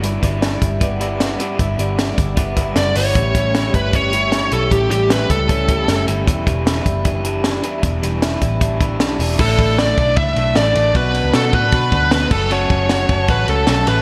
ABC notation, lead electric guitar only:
X:1
M:4/4
L:1/8
Q:1/4=154
K:Amix
V:1 name="Lead electric guitar"
z8 | z6 d c- | c3 B c3 A | G G B A4 z |
z8 | z8 | A2 d2 e2 d2 | B2 A B3 B A |
c4 B A2 B |]